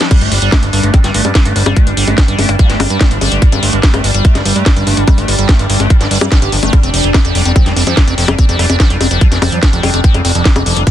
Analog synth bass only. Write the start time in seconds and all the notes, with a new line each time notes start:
0.21 G1
0.32 G1
0.42 G1
0.63 G1
0.73 G1
0.83 G1
1.04 G1
1.14 G1
1.25 G2
1.45 G1
1.56 G1
1.66 G1
1.87 G1
1.97 G1
2.08 G1
2.28 G1
2.39 G1
2.49 G1
2.70 G1
2.80 G1
2.90 G2
3.11 G1
3.21 G1
3.32 G1
3.52 G1
3.63 G1
3.73 G1
3.94 G1
4.04 G1
4.14 G1
4.35 G1
4.46 G1
4.56 G2
4.76 G1
4.87 G1
4.97 G1
5.18 G1
5.28 G1
5.39 G1
5.59 G1
5.70 G1
5.80 G1
6.01 G1
6.11 G1
6.21 G2
6.42 G1
6.52 G1
6.63 G1
6.83 F1
6.94 F1
7.04 F1
7.25 F1
7.35 F1
7.45 F1
7.66 F1
7.76 F1
7.87 F2
8.07 F1
8.18 F1
8.28 F1
8.49 F1
8.59 F1
8.70 F1
8.90 F1
9.01 F1
9.11 F1
9.32 F1
9.42 F1
9.52 F2
9.73 F1
9.83 F1
9.94 F1
10.14 F1
10.25 F1
10.35 F1
10.56 F1
10.66 F1
10.76 F1